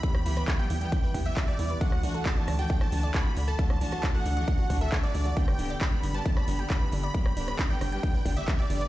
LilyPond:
<<
  \new Staff \with { instrumentName = "Supersaw synth" } { \time 4/4 \key d \mixolydian \tempo 4 = 135 b''8 b''8. g''8 g''4 e''8 d''8. | fis''4 a''8. g''8 a''8. b''8. a''16~ | a''8 a''8. fis''8 fis''4 e''8 d''8. | g''4 b''8. a''8 b''8. b''8. b''16~ |
b''8 b''8. g''8 g''4 e''8 d''8. | }
  \new Staff \with { instrumentName = "Synth pluck" } { \time 4/4 \key d \mixolydian b''16 g''16 e'16 b'16 e'16 e''16 e'16 g''16 e'16 b'16 e'16 e''16 e'16 g''16 e'16 b'16 | d'16 fis'16 d'16 a'16 d'16 d''16 d'16 fis'16 d'16 a'16 d'16 d''16 d'16 fis'16 d'16 a'16 | e''16 d''16 d'16 fis'16 d'16 a'16 d'16 d''16 d'16 fis'16 d'16 a'16 d'16 d''16 d'16 fis'16 | d'16 b'16 d'16 d''16 d'16 g''16 d'16 b'16 d'16 d''16 d'16 g''16 d'16 b'16 d'16 d''16 |
b''16 g''16 d'16 b'16 d'16 d''16 d'16 g''16 d'16 b'16 d'16 d''16 d'16 g''16 d'16 b'16 | }
  \new Staff \with { instrumentName = "String section" } { \time 4/4 \key d \mixolydian <e g b g'>8 <e g b g'>8 r16 <e g b g'>8 <e g b g'>16 <e g b g'>8 <e g b g'>16 <e g b g'>16 <e g b g'>16 <e g b g'>8 r16 | <e a d' fis'>8 <e a d' fis'>8 r16 <e a d' fis'>8 <e a d' fis'>16 <e a d' fis'>8 <e a d' fis'>16 <e a d' fis'>16 <e a d' fis'>16 <e a d' fis'>8 r16 | <e a d' fis'>8 <e a d' fis'>8 r16 <e a d' fis'>8 <e a d' fis'>16 <e a d' fis'>8 <e a d' fis'>16 <e a d' fis'>16 <e a d' fis'>16 <e a d' fis'>8 r16 | <d g b g'>8 <d g b g'>8 r16 <d g b g'>8 <d g b g'>16 <d g b g'>8 <d g b g'>16 <d g b g'>16 <d g b g'>16 <d g b g'>8 r16 |
<d g b g'>8 <d g b g'>8 r16 <d g b g'>8 <d g b g'>16 <d g b g'>8 <d g b g'>16 <d g b g'>16 <d g b g'>16 <d g b g'>8 r16 | }
  \new Staff \with { instrumentName = "Analog synth bass" } { \clef bass \time 4/4 \key d \mixolydian r16 e,16 d,8 r8 e,8 r8 e,8 r8 e,8 | r16 d,16 c,8 r8 d,8 r8 d,8 r8 d,8 | r16 d,16 c,8 r8 d,8 r8 d,8 r8 d,8 | r16 g,,16 d,,8 r8 g,,8 r8 g,,8 r8 g,,8 |
r16 g,,16 d,,8 r8 g,,8 r8 g,,8 r8 g,,8 | }
  \new DrumStaff \with { instrumentName = "Drums" } \drummode { \time 4/4 <hh bd>16 ss16 hho16 <hh ss>16 <hc hh bd>8 hho16 hh16 <hh bd>8 <hho bd>16 hh16 <hc hh bd>8 hho16 hh16 | <hh bd>16 ss16 hho16 hh16 <hc hh bd>8 <hho ss>16 hh16 <hh bd>16 ss16 hho16 hh16 <hc hh bd>8 hho16 hh16 | <hh bd>16 ss16 hho16 <hh ss>16 <hc hh bd>8 hho16 hh16 <hh bd>8 <hho bd>16 hh16 <hc hh bd>8 hho16 hh16 | <hh bd>16 ss16 hho16 hh16 <hc hh bd>8 hho16 hh16 <hh bd>16 ss16 hho16 hh16 <hc hh bd>8 hho16 hh16 |
<hh bd>16 ss16 hho16 <hh ss>16 <hc hh bd>8 <hho ss>16 hh16 <hh bd>8 <hho bd>16 hh16 <hc hh bd>8 hho16 hh16 | }
>>